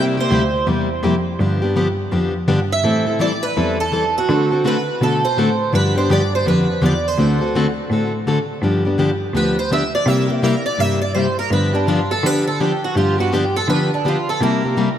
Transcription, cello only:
0, 0, Header, 1, 2, 480
1, 0, Start_track
1, 0, Tempo, 361446
1, 1853, Time_signature, 4, 2, 24, 8
1, 19899, End_track
2, 0, Start_track
2, 0, Title_t, "Cello"
2, 0, Program_c, 0, 42
2, 0, Note_on_c, 0, 48, 88
2, 312, Note_off_c, 0, 48, 0
2, 411, Note_on_c, 0, 38, 85
2, 819, Note_off_c, 0, 38, 0
2, 890, Note_on_c, 0, 40, 79
2, 1299, Note_off_c, 0, 40, 0
2, 1366, Note_on_c, 0, 41, 78
2, 1777, Note_off_c, 0, 41, 0
2, 1852, Note_on_c, 0, 43, 85
2, 2621, Note_off_c, 0, 43, 0
2, 2816, Note_on_c, 0, 41, 82
2, 3223, Note_off_c, 0, 41, 0
2, 3294, Note_on_c, 0, 43, 74
2, 3702, Note_off_c, 0, 43, 0
2, 3772, Note_on_c, 0, 45, 88
2, 4542, Note_off_c, 0, 45, 0
2, 4739, Note_on_c, 0, 40, 77
2, 5505, Note_off_c, 0, 40, 0
2, 5696, Note_on_c, 0, 50, 92
2, 6464, Note_off_c, 0, 50, 0
2, 6655, Note_on_c, 0, 47, 79
2, 7063, Note_off_c, 0, 47, 0
2, 7136, Note_on_c, 0, 45, 76
2, 7544, Note_off_c, 0, 45, 0
2, 7618, Note_on_c, 0, 43, 89
2, 8001, Note_off_c, 0, 43, 0
2, 8098, Note_on_c, 0, 43, 86
2, 8505, Note_off_c, 0, 43, 0
2, 8576, Note_on_c, 0, 41, 84
2, 8984, Note_off_c, 0, 41, 0
2, 9058, Note_on_c, 0, 40, 78
2, 9465, Note_off_c, 0, 40, 0
2, 9535, Note_on_c, 0, 38, 89
2, 10303, Note_off_c, 0, 38, 0
2, 10492, Note_on_c, 0, 45, 80
2, 11262, Note_off_c, 0, 45, 0
2, 11444, Note_on_c, 0, 43, 81
2, 12217, Note_off_c, 0, 43, 0
2, 12400, Note_on_c, 0, 38, 77
2, 13175, Note_off_c, 0, 38, 0
2, 13360, Note_on_c, 0, 48, 88
2, 14134, Note_off_c, 0, 48, 0
2, 14318, Note_on_c, 0, 43, 78
2, 15093, Note_off_c, 0, 43, 0
2, 15278, Note_on_c, 0, 43, 89
2, 16053, Note_off_c, 0, 43, 0
2, 16247, Note_on_c, 0, 50, 79
2, 17018, Note_off_c, 0, 50, 0
2, 17202, Note_on_c, 0, 43, 86
2, 17975, Note_off_c, 0, 43, 0
2, 18168, Note_on_c, 0, 50, 78
2, 18939, Note_off_c, 0, 50, 0
2, 19134, Note_on_c, 0, 48, 86
2, 19899, Note_off_c, 0, 48, 0
2, 19899, End_track
0, 0, End_of_file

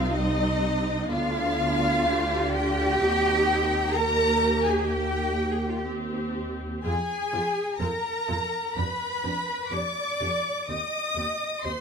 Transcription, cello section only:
0, 0, Header, 1, 2, 480
1, 0, Start_track
1, 0, Key_signature, -3, "minor"
1, 0, Tempo, 952381
1, 1506, Time_signature, 4, 2, 24, 8
1, 2462, Tempo, 964630
1, 5906, End_track
2, 0, Start_track
2, 0, Title_t, "Cello section"
2, 0, Program_c, 0, 48
2, 0, Note_on_c, 0, 65, 94
2, 63, Note_off_c, 0, 65, 0
2, 65, Note_on_c, 0, 63, 102
2, 546, Note_on_c, 0, 65, 109
2, 549, Note_off_c, 0, 63, 0
2, 1255, Note_off_c, 0, 65, 0
2, 1271, Note_on_c, 0, 67, 124
2, 1986, Note_off_c, 0, 67, 0
2, 1988, Note_on_c, 0, 70, 115
2, 2346, Note_off_c, 0, 70, 0
2, 2351, Note_on_c, 0, 68, 99
2, 2465, Note_on_c, 0, 67, 99
2, 2467, Note_off_c, 0, 68, 0
2, 2765, Note_off_c, 0, 67, 0
2, 2771, Note_on_c, 0, 68, 75
2, 2813, Note_on_c, 0, 67, 84
2, 2814, Note_off_c, 0, 68, 0
2, 2856, Note_off_c, 0, 67, 0
2, 2858, Note_on_c, 0, 65, 76
2, 2900, Note_off_c, 0, 65, 0
2, 2904, Note_on_c, 0, 67, 85
2, 2945, Note_off_c, 0, 67, 0
2, 3434, Note_on_c, 0, 68, 101
2, 3892, Note_off_c, 0, 68, 0
2, 3911, Note_on_c, 0, 70, 87
2, 4390, Note_off_c, 0, 70, 0
2, 4395, Note_on_c, 0, 71, 93
2, 4866, Note_off_c, 0, 71, 0
2, 4867, Note_on_c, 0, 74, 94
2, 5348, Note_on_c, 0, 75, 88
2, 5349, Note_off_c, 0, 74, 0
2, 5813, Note_off_c, 0, 75, 0
2, 5824, Note_on_c, 0, 72, 79
2, 5906, Note_off_c, 0, 72, 0
2, 5906, End_track
0, 0, End_of_file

